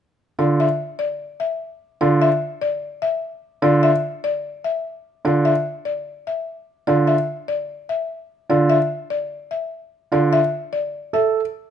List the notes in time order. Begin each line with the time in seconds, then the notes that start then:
0.39 D3 F4 D5
0.60 E5
0.99 D5
1.40 E5
2.01 D3 F4 D5
2.22 E5
2.62 D5
3.02 E5
3.62 D3 F4 D5
3.83 E5
4.24 D5
4.64 E5
5.25 D3 F4 D5
5.45 E5
5.85 D5
6.27 E5
6.87 D3 F4 D5
7.07 E5
7.48 D5
7.89 E5
8.50 D3 F4 D5
8.70 E5
9.10 D5
9.51 E5
10.12 D3 F4 D5
10.33 E5
10.73 D5
11.13 A4 E5